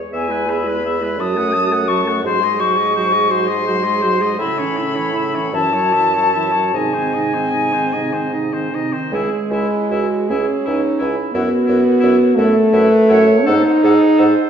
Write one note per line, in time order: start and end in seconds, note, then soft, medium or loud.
0.12 1.19 E2 medium
0.12 0.31 B3 medium
0.12 0.30 G#4 medium
0.12 0.32 E5 medium
0.12 0.51 G#5 loud
0.28 0.50 G#3 medium
0.28 0.48 E4 medium
0.28 0.51 B4 medium
0.46 0.67 B3 medium
0.46 0.66 G#4 medium
0.46 0.69 E5 medium
0.46 1.21 B5 loud
0.64 0.83 G#3 medium
0.64 0.82 E4 medium
0.64 0.84 B4 medium
0.82 1.03 B3 medium
0.82 1.02 G#4 medium
0.82 1.04 E5 medium
1.00 1.19 G#3 medium
1.00 1.18 E4 medium
1.00 1.19 B4 medium
1.18 2.23 F#2 medium
1.18 1.37 F#3 medium
1.18 1.37 F#4 medium
1.18 1.38 A5 medium
1.18 1.89 D#6 loud
1.35 1.56 A3 medium
1.35 1.55 A4 medium
1.35 1.54 F#5 medium
1.52 1.73 F#3 medium
1.52 1.72 F#4 medium
1.52 1.74 A5 medium
1.70 1.87 A3 medium
1.70 1.88 A4 medium
1.70 1.88 F#5 medium
1.87 2.07 F#3 medium
1.87 2.08 F#4 medium
1.87 2.09 A5 medium
1.87 2.23 C#6 loud
2.05 2.23 A3 medium
2.05 2.24 A4 medium
2.05 2.25 F#5 medium
2.23 4.35 G#2 medium
2.23 2.43 F#3 medium
2.23 2.42 F#4 medium
2.23 2.45 C5 medium
2.23 2.61 C6 loud
2.41 2.61 G#3 medium
2.41 2.61 G#4 medium
2.41 2.61 D#5 medium
2.59 2.80 F#3 medium
2.59 2.79 F#4 medium
2.59 2.78 C5 medium
2.59 3.32 C#6 loud
2.77 2.95 G#3 medium
2.77 2.95 G#4 medium
2.77 2.95 D#5 medium
2.96 3.16 F#3 medium
2.96 3.15 F#4 medium
2.96 3.14 C5 medium
3.13 3.33 G#3 medium
3.13 3.31 G#4 medium
3.13 3.32 D#5 medium
3.29 3.51 F#3 medium
3.29 3.51 F#4 medium
3.29 3.49 C5 medium
3.29 4.38 C6 loud
3.47 3.67 G#3 medium
3.47 3.67 G#4 medium
3.47 3.66 D#5 medium
3.67 3.86 F#3 medium
3.67 3.86 F#4 medium
3.67 3.85 C5 medium
3.83 4.06 G#3 medium
3.83 4.04 G#4 medium
3.83 4.03 D#5 medium
4.01 4.23 F#3 medium
4.01 4.22 F#4 medium
4.01 4.23 C5 medium
4.21 4.40 G#3 medium
4.21 4.39 G#4 medium
4.21 4.38 D#5 medium
4.38 5.55 A2 loud
4.38 4.62 C#3 medium
4.38 4.61 E4 medium
4.38 4.59 E5 medium
4.38 5.56 B5 loud
4.58 4.80 E3 medium
4.58 4.80 C#4 medium
4.58 4.78 C#5 medium
4.77 4.99 C#3 medium
4.77 4.97 E4 medium
4.77 4.97 E5 medium
4.95 5.15 E3 medium
4.95 5.13 C#4 medium
4.95 5.15 C#5 medium
5.14 5.38 C#3 medium
5.14 5.35 E4 medium
5.14 5.36 E5 medium
5.34 5.53 E3 medium
5.34 5.52 C#4 medium
5.34 5.53 C#5 medium
5.53 6.73 F#2 medium
5.53 5.75 E3 medium
5.53 5.73 E4 medium
5.53 5.75 E5 medium
5.53 6.77 A5 loud
5.72 5.95 F#3 medium
5.72 5.95 F#4 medium
5.72 5.95 C#5 medium
5.93 6.17 E3 medium
5.93 6.16 E4 medium
5.93 6.15 E5 medium
6.14 6.34 F#3 medium
6.14 6.35 F#4 medium
6.14 6.32 C#5 medium
6.33 6.56 E3 medium
6.33 6.57 E4 medium
6.33 6.53 E5 medium
6.52 6.74 F#3 medium
6.52 6.73 C#5 medium
6.56 6.75 F#4 medium
6.73 8.72 G#2 medium
6.73 6.96 C3 medium
6.73 6.96 D#4 medium
6.73 6.95 D#5 medium
6.73 8.73 G#5 loud
6.93 7.16 D#3 medium
6.93 7.17 C4 medium
6.93 7.15 C5 medium
7.14 7.35 C3 medium
7.14 7.36 D#4 medium
7.14 7.35 D#5 medium
7.33 7.52 D#3 medium
7.33 7.53 C4 medium
7.33 7.50 C5 medium
7.51 7.75 C3 medium
7.51 7.75 D#4 medium
7.51 7.74 D#5 medium
7.72 7.95 D#3 medium
7.72 7.95 C4 medium
7.72 7.95 C5 medium
7.93 8.14 C3 medium
7.93 8.14 D#4 medium
7.93 8.15 D#5 medium
8.12 8.32 D#3 medium
8.12 8.33 C4 medium
8.12 8.32 C5 medium
8.33 8.54 C3 medium
8.33 8.53 D#4 medium
8.33 8.55 D#5 medium
8.52 8.74 D#3 medium
8.52 8.73 C4 medium
8.52 8.76 C5 medium
8.72 8.95 C3 medium
8.72 8.93 D#4 medium
8.72 8.94 D#5 medium
8.92 9.12 D#3 medium
8.92 9.11 C4 medium
8.92 9.12 C5 medium
9.12 9.28 C#2 medium
9.12 10.32 G#3 loud
9.12 9.29 E4 medium
9.12 9.53 G#4 medium
9.12 9.21 G#5 medium
9.49 9.66 C#2 medium
9.49 9.91 E4 medium
9.49 9.68 E4 medium
9.49 9.58 G#5 medium
9.90 10.07 C#2 medium
9.90 10.07 E4 medium
9.90 10.30 F#4 medium
9.90 10.00 G#5 medium
10.29 10.46 C#2 medium
10.29 11.16 C#4 loud
10.29 10.46 E4 medium
10.29 10.69 G#4 medium
10.29 10.37 G#5 medium
10.65 10.82 C#2 medium
10.65 11.03 D#4 medium
10.65 10.80 E4 medium
10.65 10.75 G#5 medium
10.99 11.16 C#2 medium
10.99 11.14 E4 medium
10.99 11.34 E4 medium
10.99 11.08 G#5 medium
11.33 11.50 F#2 medium
11.33 12.37 B3 loud
11.33 11.50 E4 medium
11.33 12.41 F#4 loud
11.33 11.42 F#5 medium
11.66 11.84 F#2 medium
11.66 11.82 E4 medium
11.66 11.76 F#5 medium
12.00 12.19 F#2 medium
12.00 12.16 E4 medium
12.00 12.10 F#5 medium
12.36 12.53 F#2 medium
12.36 13.47 A3 loud
12.36 12.54 E4 medium
12.36 12.75 A4 medium
12.36 12.44 F#5 medium
12.72 12.89 F#2 medium
12.72 12.89 E4 medium
12.72 13.10 B4 loud
12.72 12.80 F#5 medium
13.09 13.26 F#2 loud
13.09 13.25 E4 medium
13.09 13.48 C#5 loud
13.09 13.17 F#5 medium
13.46 13.64 G#2 loud
13.46 14.50 D#4 loud
13.46 13.62 A4 loud
13.46 13.85 C5 loud
13.46 13.54 F#5 loud
13.84 13.99 G#2 loud
13.84 14.20 G#4 loud
13.84 13.99 A4 medium
13.84 13.92 F#5 medium
14.17 14.35 G#2 loud
14.17 14.33 A4 medium
14.17 14.50 C5 loud
14.17 14.26 F#5 medium